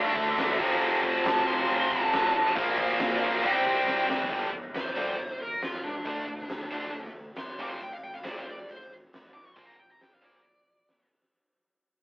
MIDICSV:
0, 0, Header, 1, 6, 480
1, 0, Start_track
1, 0, Key_signature, -2, "minor"
1, 0, Tempo, 437637
1, 893, Time_signature, 4, 2, 24, 8
1, 13192, End_track
2, 0, Start_track
2, 0, Title_t, "Lead electric guitar"
2, 0, Program_c, 0, 29
2, 0, Note_on_c, 0, 77, 97
2, 54, Note_off_c, 0, 77, 0
2, 54, Note_on_c, 0, 76, 97
2, 626, Note_off_c, 0, 76, 0
2, 1365, Note_on_c, 0, 81, 105
2, 1611, Note_on_c, 0, 84, 104
2, 1614, Note_off_c, 0, 81, 0
2, 2079, Note_on_c, 0, 81, 108
2, 2103, Note_off_c, 0, 84, 0
2, 2528, Note_off_c, 0, 81, 0
2, 2568, Note_on_c, 0, 81, 90
2, 2796, Note_on_c, 0, 77, 103
2, 2814, Note_off_c, 0, 81, 0
2, 3453, Note_off_c, 0, 77, 0
2, 3457, Note_on_c, 0, 74, 74
2, 3510, Note_off_c, 0, 74, 0
2, 3514, Note_on_c, 0, 77, 82
2, 3766, Note_off_c, 0, 77, 0
2, 3774, Note_on_c, 0, 79, 83
2, 4443, Note_off_c, 0, 79, 0
2, 5211, Note_on_c, 0, 72, 96
2, 5904, Note_off_c, 0, 72, 0
2, 5945, Note_on_c, 0, 70, 77
2, 6165, Note_on_c, 0, 65, 71
2, 6166, Note_off_c, 0, 70, 0
2, 6396, Note_off_c, 0, 65, 0
2, 6401, Note_on_c, 0, 62, 96
2, 7800, Note_off_c, 0, 62, 0
2, 8088, Note_on_c, 0, 84, 90
2, 8319, Note_off_c, 0, 84, 0
2, 8345, Note_on_c, 0, 86, 81
2, 8435, Note_off_c, 0, 86, 0
2, 8440, Note_on_c, 0, 84, 79
2, 8559, Note_off_c, 0, 84, 0
2, 8583, Note_on_c, 0, 79, 86
2, 8690, Note_off_c, 0, 79, 0
2, 8693, Note_on_c, 0, 77, 89
2, 8806, Note_off_c, 0, 77, 0
2, 8812, Note_on_c, 0, 79, 97
2, 8925, Note_off_c, 0, 79, 0
2, 8927, Note_on_c, 0, 77, 82
2, 9043, Note_off_c, 0, 77, 0
2, 9064, Note_on_c, 0, 74, 94
2, 9172, Note_off_c, 0, 74, 0
2, 9210, Note_on_c, 0, 72, 88
2, 9306, Note_off_c, 0, 72, 0
2, 9315, Note_on_c, 0, 74, 89
2, 9534, Note_off_c, 0, 74, 0
2, 9552, Note_on_c, 0, 72, 95
2, 9773, Note_off_c, 0, 72, 0
2, 10244, Note_on_c, 0, 86, 94
2, 10365, Note_off_c, 0, 86, 0
2, 10365, Note_on_c, 0, 85, 91
2, 10461, Note_off_c, 0, 85, 0
2, 10461, Note_on_c, 0, 84, 82
2, 10591, Note_off_c, 0, 84, 0
2, 10591, Note_on_c, 0, 82, 84
2, 10742, Note_off_c, 0, 82, 0
2, 10742, Note_on_c, 0, 79, 84
2, 10853, Note_off_c, 0, 79, 0
2, 10872, Note_on_c, 0, 82, 86
2, 10981, Note_off_c, 0, 82, 0
2, 10981, Note_on_c, 0, 79, 85
2, 11116, Note_off_c, 0, 79, 0
2, 11116, Note_on_c, 0, 77, 96
2, 11221, Note_off_c, 0, 77, 0
2, 11232, Note_on_c, 0, 74, 90
2, 12158, Note_off_c, 0, 74, 0
2, 13192, End_track
3, 0, Start_track
3, 0, Title_t, "Distorted electric guitar"
3, 0, Program_c, 1, 30
3, 0, Note_on_c, 1, 50, 104
3, 0, Note_on_c, 1, 57, 103
3, 0, Note_on_c, 1, 62, 110
3, 634, Note_off_c, 1, 50, 0
3, 638, Note_on_c, 1, 41, 97
3, 643, Note_off_c, 1, 57, 0
3, 653, Note_off_c, 1, 62, 0
3, 657, Note_on_c, 1, 48, 108
3, 674, Note_on_c, 1, 53, 112
3, 2545, Note_off_c, 1, 41, 0
3, 2555, Note_off_c, 1, 48, 0
3, 2563, Note_off_c, 1, 53, 0
3, 2800, Note_on_c, 1, 46, 107
3, 2814, Note_on_c, 1, 53, 111
3, 2830, Note_on_c, 1, 58, 109
3, 3746, Note_off_c, 1, 46, 0
3, 3753, Note_off_c, 1, 53, 0
3, 3757, Note_on_c, 1, 48, 101
3, 3761, Note_off_c, 1, 58, 0
3, 3777, Note_on_c, 1, 55, 104
3, 3789, Note_on_c, 1, 60, 114
3, 4704, Note_off_c, 1, 48, 0
3, 4706, Note_off_c, 1, 55, 0
3, 4712, Note_on_c, 1, 43, 96
3, 4718, Note_on_c, 1, 50, 93
3, 4719, Note_on_c, 1, 55, 105
3, 4720, Note_off_c, 1, 60, 0
3, 4909, Note_off_c, 1, 43, 0
3, 4912, Note_off_c, 1, 50, 0
3, 4912, Note_off_c, 1, 55, 0
3, 5444, Note_on_c, 1, 43, 89
3, 5453, Note_on_c, 1, 50, 98
3, 5456, Note_on_c, 1, 55, 98
3, 5634, Note_off_c, 1, 43, 0
3, 5639, Note_off_c, 1, 50, 0
3, 5641, Note_off_c, 1, 55, 0
3, 6639, Note_on_c, 1, 50, 90
3, 6651, Note_on_c, 1, 57, 97
3, 6652, Note_on_c, 1, 62, 100
3, 6833, Note_off_c, 1, 50, 0
3, 6838, Note_off_c, 1, 57, 0
3, 6839, Note_off_c, 1, 62, 0
3, 7363, Note_on_c, 1, 50, 90
3, 7371, Note_on_c, 1, 57, 84
3, 7379, Note_on_c, 1, 62, 92
3, 7555, Note_off_c, 1, 50, 0
3, 7559, Note_off_c, 1, 57, 0
3, 7563, Note_off_c, 1, 62, 0
3, 8321, Note_on_c, 1, 41, 92
3, 8326, Note_on_c, 1, 48, 89
3, 8330, Note_on_c, 1, 53, 106
3, 8515, Note_off_c, 1, 41, 0
3, 8517, Note_off_c, 1, 48, 0
3, 8519, Note_off_c, 1, 53, 0
3, 9030, Note_on_c, 1, 41, 103
3, 9037, Note_on_c, 1, 48, 97
3, 9048, Note_on_c, 1, 53, 97
3, 9230, Note_off_c, 1, 41, 0
3, 9234, Note_off_c, 1, 48, 0
3, 9239, Note_off_c, 1, 53, 0
3, 10488, Note_on_c, 1, 46, 93
3, 10496, Note_on_c, 1, 53, 89
3, 10504, Note_on_c, 1, 58, 104
3, 10682, Note_off_c, 1, 46, 0
3, 10686, Note_off_c, 1, 53, 0
3, 10690, Note_off_c, 1, 58, 0
3, 11209, Note_on_c, 1, 46, 75
3, 11211, Note_on_c, 1, 53, 87
3, 11220, Note_on_c, 1, 58, 88
3, 11404, Note_off_c, 1, 46, 0
3, 11405, Note_off_c, 1, 53, 0
3, 11409, Note_off_c, 1, 58, 0
3, 13192, End_track
4, 0, Start_track
4, 0, Title_t, "Overdriven electric guitar"
4, 0, Program_c, 2, 29
4, 0, Note_on_c, 2, 50, 97
4, 0, Note_on_c, 2, 57, 120
4, 0, Note_on_c, 2, 62, 100
4, 147, Note_off_c, 2, 50, 0
4, 153, Note_off_c, 2, 57, 0
4, 158, Note_off_c, 2, 62, 0
4, 160, Note_on_c, 2, 50, 92
4, 166, Note_on_c, 2, 57, 96
4, 171, Note_on_c, 2, 62, 98
4, 402, Note_off_c, 2, 57, 0
4, 403, Note_off_c, 2, 50, 0
4, 413, Note_off_c, 2, 62, 0
4, 415, Note_on_c, 2, 57, 96
4, 416, Note_on_c, 2, 50, 78
4, 426, Note_on_c, 2, 62, 100
4, 640, Note_off_c, 2, 50, 0
4, 640, Note_off_c, 2, 57, 0
4, 645, Note_off_c, 2, 62, 0
4, 650, Note_on_c, 2, 41, 104
4, 662, Note_on_c, 2, 53, 101
4, 663, Note_on_c, 2, 48, 102
4, 876, Note_off_c, 2, 41, 0
4, 885, Note_off_c, 2, 48, 0
4, 889, Note_off_c, 2, 53, 0
4, 890, Note_on_c, 2, 41, 95
4, 898, Note_on_c, 2, 48, 96
4, 902, Note_on_c, 2, 53, 90
4, 1114, Note_off_c, 2, 41, 0
4, 1121, Note_off_c, 2, 48, 0
4, 1123, Note_off_c, 2, 53, 0
4, 1127, Note_on_c, 2, 41, 77
4, 1134, Note_on_c, 2, 48, 89
4, 1137, Note_on_c, 2, 53, 111
4, 1359, Note_off_c, 2, 41, 0
4, 1364, Note_off_c, 2, 48, 0
4, 1370, Note_off_c, 2, 53, 0
4, 1372, Note_on_c, 2, 41, 83
4, 1377, Note_on_c, 2, 48, 101
4, 1383, Note_on_c, 2, 53, 91
4, 1601, Note_off_c, 2, 41, 0
4, 1608, Note_off_c, 2, 48, 0
4, 1613, Note_off_c, 2, 53, 0
4, 1614, Note_on_c, 2, 41, 88
4, 1621, Note_on_c, 2, 48, 102
4, 1626, Note_on_c, 2, 53, 98
4, 1847, Note_off_c, 2, 41, 0
4, 1849, Note_off_c, 2, 48, 0
4, 1854, Note_off_c, 2, 53, 0
4, 1860, Note_on_c, 2, 41, 102
4, 1862, Note_on_c, 2, 48, 103
4, 1867, Note_on_c, 2, 53, 123
4, 2076, Note_off_c, 2, 41, 0
4, 2081, Note_off_c, 2, 48, 0
4, 2086, Note_off_c, 2, 53, 0
4, 2090, Note_on_c, 2, 41, 87
4, 2094, Note_on_c, 2, 48, 103
4, 2099, Note_on_c, 2, 53, 104
4, 2322, Note_off_c, 2, 41, 0
4, 2329, Note_off_c, 2, 48, 0
4, 2330, Note_off_c, 2, 53, 0
4, 2335, Note_on_c, 2, 41, 92
4, 2342, Note_on_c, 2, 48, 92
4, 2343, Note_on_c, 2, 53, 100
4, 2561, Note_off_c, 2, 48, 0
4, 2562, Note_off_c, 2, 41, 0
4, 2569, Note_off_c, 2, 53, 0
4, 2575, Note_on_c, 2, 41, 99
4, 2575, Note_on_c, 2, 48, 97
4, 2583, Note_on_c, 2, 53, 117
4, 2796, Note_off_c, 2, 41, 0
4, 2796, Note_off_c, 2, 48, 0
4, 2800, Note_off_c, 2, 53, 0
4, 2820, Note_on_c, 2, 46, 86
4, 2824, Note_on_c, 2, 53, 88
4, 2829, Note_on_c, 2, 58, 95
4, 3041, Note_off_c, 2, 46, 0
4, 3051, Note_off_c, 2, 53, 0
4, 3055, Note_on_c, 2, 46, 94
4, 3056, Note_off_c, 2, 58, 0
4, 3064, Note_on_c, 2, 53, 101
4, 3069, Note_on_c, 2, 58, 94
4, 3275, Note_off_c, 2, 46, 0
4, 3284, Note_off_c, 2, 53, 0
4, 3288, Note_off_c, 2, 58, 0
4, 3288, Note_on_c, 2, 46, 81
4, 3297, Note_on_c, 2, 53, 86
4, 3302, Note_on_c, 2, 58, 96
4, 3526, Note_off_c, 2, 46, 0
4, 3534, Note_off_c, 2, 53, 0
4, 3540, Note_off_c, 2, 58, 0
4, 3540, Note_on_c, 2, 46, 82
4, 3547, Note_on_c, 2, 53, 88
4, 3553, Note_on_c, 2, 58, 87
4, 3757, Note_off_c, 2, 46, 0
4, 3761, Note_off_c, 2, 53, 0
4, 3764, Note_off_c, 2, 58, 0
4, 3769, Note_on_c, 2, 48, 98
4, 3776, Note_on_c, 2, 55, 103
4, 3780, Note_on_c, 2, 60, 112
4, 3994, Note_off_c, 2, 48, 0
4, 3999, Note_off_c, 2, 60, 0
4, 4003, Note_off_c, 2, 55, 0
4, 4007, Note_on_c, 2, 48, 94
4, 4012, Note_on_c, 2, 60, 92
4, 4016, Note_on_c, 2, 55, 96
4, 4224, Note_off_c, 2, 48, 0
4, 4226, Note_off_c, 2, 55, 0
4, 4237, Note_on_c, 2, 48, 81
4, 4238, Note_off_c, 2, 60, 0
4, 4239, Note_on_c, 2, 55, 92
4, 4251, Note_on_c, 2, 60, 91
4, 4467, Note_off_c, 2, 48, 0
4, 4476, Note_off_c, 2, 55, 0
4, 4478, Note_off_c, 2, 60, 0
4, 4480, Note_on_c, 2, 48, 83
4, 4489, Note_on_c, 2, 55, 102
4, 4492, Note_on_c, 2, 60, 90
4, 4707, Note_off_c, 2, 48, 0
4, 4711, Note_off_c, 2, 55, 0
4, 4712, Note_off_c, 2, 60, 0
4, 13192, End_track
5, 0, Start_track
5, 0, Title_t, "Fingered electric bass"
5, 0, Program_c, 3, 33
5, 176, Note_on_c, 3, 38, 96
5, 341, Note_off_c, 3, 38, 0
5, 413, Note_on_c, 3, 40, 90
5, 578, Note_off_c, 3, 40, 0
5, 653, Note_on_c, 3, 29, 99
5, 818, Note_off_c, 3, 29, 0
5, 890, Note_on_c, 3, 29, 101
5, 1056, Note_off_c, 3, 29, 0
5, 1138, Note_on_c, 3, 29, 87
5, 1301, Note_off_c, 3, 29, 0
5, 1382, Note_on_c, 3, 29, 104
5, 1543, Note_off_c, 3, 29, 0
5, 1620, Note_on_c, 3, 29, 99
5, 1781, Note_off_c, 3, 29, 0
5, 1854, Note_on_c, 3, 29, 97
5, 2182, Note_off_c, 3, 29, 0
5, 2330, Note_on_c, 3, 29, 91
5, 2494, Note_off_c, 3, 29, 0
5, 2567, Note_on_c, 3, 33, 102
5, 2818, Note_off_c, 3, 33, 0
5, 2818, Note_on_c, 3, 34, 107
5, 3144, Note_off_c, 3, 34, 0
5, 3297, Note_on_c, 3, 46, 98
5, 3458, Note_off_c, 3, 46, 0
5, 3535, Note_on_c, 3, 34, 95
5, 3696, Note_off_c, 3, 34, 0
5, 3771, Note_on_c, 3, 36, 95
5, 3933, Note_off_c, 3, 36, 0
5, 4002, Note_on_c, 3, 36, 95
5, 4167, Note_off_c, 3, 36, 0
5, 4250, Note_on_c, 3, 36, 90
5, 4412, Note_off_c, 3, 36, 0
5, 4483, Note_on_c, 3, 29, 99
5, 4731, Note_off_c, 3, 29, 0
5, 4731, Note_on_c, 3, 31, 88
5, 4890, Note_off_c, 3, 31, 0
5, 4966, Note_on_c, 3, 31, 81
5, 5127, Note_off_c, 3, 31, 0
5, 5203, Note_on_c, 3, 31, 86
5, 5365, Note_off_c, 3, 31, 0
5, 5445, Note_on_c, 3, 31, 96
5, 5606, Note_off_c, 3, 31, 0
5, 5679, Note_on_c, 3, 31, 90
5, 5842, Note_off_c, 3, 31, 0
5, 5911, Note_on_c, 3, 31, 88
5, 6077, Note_off_c, 3, 31, 0
5, 6160, Note_on_c, 3, 31, 86
5, 6323, Note_off_c, 3, 31, 0
5, 6411, Note_on_c, 3, 37, 81
5, 6570, Note_off_c, 3, 37, 0
5, 6644, Note_on_c, 3, 38, 91
5, 6806, Note_off_c, 3, 38, 0
5, 6886, Note_on_c, 3, 38, 78
5, 7047, Note_off_c, 3, 38, 0
5, 7132, Note_on_c, 3, 38, 88
5, 7292, Note_off_c, 3, 38, 0
5, 7377, Note_on_c, 3, 38, 96
5, 7535, Note_off_c, 3, 38, 0
5, 7607, Note_on_c, 3, 38, 86
5, 7768, Note_off_c, 3, 38, 0
5, 7832, Note_on_c, 3, 38, 85
5, 7998, Note_off_c, 3, 38, 0
5, 8088, Note_on_c, 3, 40, 78
5, 8249, Note_off_c, 3, 40, 0
5, 8326, Note_on_c, 3, 29, 92
5, 8488, Note_off_c, 3, 29, 0
5, 8568, Note_on_c, 3, 29, 87
5, 8730, Note_off_c, 3, 29, 0
5, 8809, Note_on_c, 3, 29, 83
5, 8970, Note_off_c, 3, 29, 0
5, 9046, Note_on_c, 3, 29, 87
5, 9209, Note_off_c, 3, 29, 0
5, 9290, Note_on_c, 3, 29, 93
5, 9452, Note_off_c, 3, 29, 0
5, 9535, Note_on_c, 3, 29, 81
5, 9695, Note_off_c, 3, 29, 0
5, 9774, Note_on_c, 3, 29, 82
5, 9935, Note_off_c, 3, 29, 0
5, 10022, Note_on_c, 3, 29, 80
5, 10180, Note_off_c, 3, 29, 0
5, 10260, Note_on_c, 3, 36, 83
5, 10420, Note_off_c, 3, 36, 0
5, 10493, Note_on_c, 3, 34, 89
5, 10655, Note_off_c, 3, 34, 0
5, 10752, Note_on_c, 3, 34, 73
5, 10908, Note_off_c, 3, 34, 0
5, 10987, Note_on_c, 3, 34, 86
5, 11145, Note_off_c, 3, 34, 0
5, 11232, Note_on_c, 3, 34, 84
5, 11389, Note_off_c, 3, 34, 0
5, 11480, Note_on_c, 3, 34, 79
5, 11634, Note_off_c, 3, 34, 0
5, 11713, Note_on_c, 3, 34, 77
5, 11870, Note_off_c, 3, 34, 0
5, 11955, Note_on_c, 3, 46, 70
5, 12111, Note_off_c, 3, 46, 0
5, 12193, Note_on_c, 3, 34, 79
5, 12350, Note_off_c, 3, 34, 0
5, 13192, End_track
6, 0, Start_track
6, 0, Title_t, "Drums"
6, 173, Note_on_c, 9, 36, 97
6, 176, Note_on_c, 9, 49, 71
6, 282, Note_off_c, 9, 36, 0
6, 286, Note_off_c, 9, 49, 0
6, 415, Note_on_c, 9, 49, 94
6, 424, Note_on_c, 9, 38, 105
6, 525, Note_off_c, 9, 49, 0
6, 533, Note_off_c, 9, 38, 0
6, 652, Note_on_c, 9, 36, 97
6, 652, Note_on_c, 9, 49, 109
6, 761, Note_off_c, 9, 36, 0
6, 761, Note_off_c, 9, 49, 0
6, 890, Note_on_c, 9, 49, 97
6, 1000, Note_off_c, 9, 49, 0
6, 1131, Note_on_c, 9, 36, 86
6, 1131, Note_on_c, 9, 49, 77
6, 1241, Note_off_c, 9, 36, 0
6, 1241, Note_off_c, 9, 49, 0
6, 1375, Note_on_c, 9, 49, 89
6, 1384, Note_on_c, 9, 38, 115
6, 1485, Note_off_c, 9, 49, 0
6, 1494, Note_off_c, 9, 38, 0
6, 1623, Note_on_c, 9, 49, 70
6, 1733, Note_off_c, 9, 49, 0
6, 1861, Note_on_c, 9, 49, 89
6, 1970, Note_off_c, 9, 49, 0
6, 2094, Note_on_c, 9, 36, 98
6, 2096, Note_on_c, 9, 49, 65
6, 2204, Note_off_c, 9, 36, 0
6, 2206, Note_off_c, 9, 49, 0
6, 2334, Note_on_c, 9, 49, 85
6, 2342, Note_on_c, 9, 38, 113
6, 2443, Note_off_c, 9, 49, 0
6, 2452, Note_off_c, 9, 38, 0
6, 2582, Note_on_c, 9, 49, 68
6, 2692, Note_off_c, 9, 49, 0
6, 2812, Note_on_c, 9, 49, 93
6, 2814, Note_on_c, 9, 36, 127
6, 2921, Note_off_c, 9, 49, 0
6, 2923, Note_off_c, 9, 36, 0
6, 3047, Note_on_c, 9, 49, 66
6, 3050, Note_on_c, 9, 36, 94
6, 3157, Note_off_c, 9, 49, 0
6, 3159, Note_off_c, 9, 36, 0
6, 3282, Note_on_c, 9, 49, 80
6, 3291, Note_on_c, 9, 38, 109
6, 3392, Note_off_c, 9, 49, 0
6, 3401, Note_off_c, 9, 38, 0
6, 3521, Note_on_c, 9, 49, 69
6, 3631, Note_off_c, 9, 49, 0
6, 3756, Note_on_c, 9, 49, 92
6, 3865, Note_off_c, 9, 49, 0
6, 3991, Note_on_c, 9, 49, 72
6, 4001, Note_on_c, 9, 36, 101
6, 4100, Note_off_c, 9, 49, 0
6, 4111, Note_off_c, 9, 36, 0
6, 4256, Note_on_c, 9, 38, 67
6, 4365, Note_off_c, 9, 38, 0
6, 4495, Note_on_c, 9, 38, 99
6, 4605, Note_off_c, 9, 38, 0
6, 4606, Note_on_c, 9, 43, 102
6, 4716, Note_off_c, 9, 43, 0
6, 4726, Note_on_c, 9, 36, 100
6, 4727, Note_on_c, 9, 46, 53
6, 4836, Note_off_c, 9, 36, 0
6, 4837, Note_off_c, 9, 46, 0
6, 5207, Note_on_c, 9, 46, 50
6, 5216, Note_on_c, 9, 38, 100
6, 5317, Note_off_c, 9, 46, 0
6, 5325, Note_off_c, 9, 38, 0
6, 5695, Note_on_c, 9, 46, 48
6, 5804, Note_off_c, 9, 46, 0
6, 6162, Note_on_c, 9, 46, 47
6, 6171, Note_on_c, 9, 38, 111
6, 6272, Note_off_c, 9, 46, 0
6, 6280, Note_off_c, 9, 38, 0
6, 6633, Note_on_c, 9, 46, 48
6, 6640, Note_on_c, 9, 36, 110
6, 6743, Note_off_c, 9, 46, 0
6, 6750, Note_off_c, 9, 36, 0
6, 7012, Note_on_c, 9, 38, 29
6, 7118, Note_on_c, 9, 46, 44
6, 7121, Note_off_c, 9, 38, 0
6, 7126, Note_on_c, 9, 38, 106
6, 7227, Note_off_c, 9, 46, 0
6, 7236, Note_off_c, 9, 38, 0
6, 7600, Note_on_c, 9, 46, 46
6, 7710, Note_off_c, 9, 46, 0
6, 8069, Note_on_c, 9, 46, 49
6, 8078, Note_on_c, 9, 38, 96
6, 8179, Note_off_c, 9, 46, 0
6, 8187, Note_off_c, 9, 38, 0
6, 8560, Note_on_c, 9, 46, 49
6, 8670, Note_off_c, 9, 46, 0
6, 8932, Note_on_c, 9, 38, 31
6, 9040, Note_on_c, 9, 46, 47
6, 9041, Note_off_c, 9, 38, 0
6, 9048, Note_on_c, 9, 38, 108
6, 9149, Note_off_c, 9, 46, 0
6, 9158, Note_off_c, 9, 38, 0
6, 9528, Note_on_c, 9, 46, 49
6, 9637, Note_off_c, 9, 46, 0
6, 10016, Note_on_c, 9, 46, 50
6, 10025, Note_on_c, 9, 38, 95
6, 10126, Note_off_c, 9, 46, 0
6, 10134, Note_off_c, 9, 38, 0
6, 10488, Note_on_c, 9, 46, 48
6, 10491, Note_on_c, 9, 36, 99
6, 10597, Note_off_c, 9, 46, 0
6, 10601, Note_off_c, 9, 36, 0
6, 10865, Note_on_c, 9, 38, 31
6, 10974, Note_on_c, 9, 46, 45
6, 10975, Note_off_c, 9, 38, 0
6, 10983, Note_on_c, 9, 38, 101
6, 11084, Note_off_c, 9, 46, 0
6, 11093, Note_off_c, 9, 38, 0
6, 11462, Note_on_c, 9, 46, 42
6, 11572, Note_off_c, 9, 46, 0
6, 11934, Note_on_c, 9, 46, 47
6, 11943, Note_on_c, 9, 38, 96
6, 12044, Note_off_c, 9, 46, 0
6, 12053, Note_off_c, 9, 38, 0
6, 12191, Note_on_c, 9, 38, 50
6, 12300, Note_off_c, 9, 38, 0
6, 12307, Note_on_c, 9, 38, 80
6, 12417, Note_off_c, 9, 38, 0
6, 13192, End_track
0, 0, End_of_file